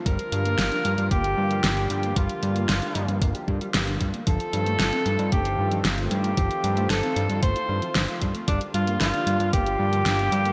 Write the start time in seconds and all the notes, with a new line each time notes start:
Already playing: F3 F4
0.06 G1 D3 G3 A#3 A#4, kick, closed hi-hat
0.19 closed hi-hat
0.32 G2 G3, closed hi-hat
0.45 A#3, closed hi-hat
0.58 G1, snare, closed hi-hat
0.72 D4, closed hi-hat
0.85 G2 G3, closed hi-hat
0.98 G2, closed hi-hat
1.11 G1 A#3 G4, kick, closed hi-hat
1.24 G4, closed hi-hat
1.37 G2
1.51 G3, closed hi-hat
1.64 G1 G3, snare, closed hi-hat
1.77 closed hi-hat
1.90 G2 G3 G4, closed hi-hat
2.03 A#3, closed hi-hat
2.16 G1 G3 F4, kick, closed hi-hat
2.29 closed hi-hat
2.43 G2 G3, closed hi-hat
2.56 A#3, closed hi-hat
2.69 G1 F4, snare, closed hi-hat
2.82 D4, closed hi-hat
2.95 G2 G3, closed hi-hat
3.08 G2, closed hi-hat
3.22 G1 A#3, kick, closed hi-hat
3.35 G4, closed hi-hat
3.48 G2, kick
3.61 G3, closed hi-hat
3.74 G1 G3, snare, closed hi-hat
3.87 closed hi-hat
4.01 G2 G3, kick, closed hi-hat
4.14 A#3, closed hi-hat
4.27 G1 D#3 F3 A3 C4 F4 A4, kick, closed hi-hat
4.40 closed hi-hat
4.53 G2 F3, closed hi-hat
4.66 A3, closed hi-hat
4.79 G1, snare, closed hi-hat
4.93 C4, closed hi-hat
5.06 G2 F3, closed hi-hat
5.19 G2, closed hi-hat
5.32 G1 A3 G4, kick, closed hi-hat
5.45 F4, closed hi-hat
5.59 G2
5.71 F3, closed hi-hat
5.85 G1 F3, snare, closed hi-hat
5.98 closed hi-hat
6.11 G2 F3 G4, closed hi-hat
6.24 A3, closed hi-hat
6.37 G1 F3, kick, closed hi-hat
6.51 closed hi-hat
6.64 G2 F3, closed hi-hat
6.77 A3, closed hi-hat
6.90 G1 A4, snare, closed hi-hat
7.03 C4, closed hi-hat
7.16 G2 F3, closed hi-hat
7.29 G2, closed hi-hat
7.43 G1 A3 C5, kick, closed hi-hat
7.56 F4, closed hi-hat
7.69 G2
7.82 F3, closed hi-hat
7.95 G1 F3, snare, closed hi-hat
8.08 closed hi-hat
8.21 G2 F3, kick, closed hi-hat
8.35 A3, closed hi-hat
8.48 G1 D3 F3 G3 A#3 D4, kick, closed hi-hat
8.61 closed hi-hat
8.74 G2 G3 F4, closed hi-hat
8.87 A#3, closed hi-hat
9.00 G1 F4, snare, closed hi-hat
9.14 D4, closed hi-hat
9.27 G2 G3, closed hi-hat
9.40 G2, closed hi-hat
9.53 G1 A#3 G4, kick, closed hi-hat
9.66 G4, closed hi-hat
9.79 G2
9.93 G3, closed hi-hat
10.06 G1 G3, snare, closed hi-hat
10.19 closed hi-hat
10.32 G2 G3, closed hi-hat
10.45 A#3, closed hi-hat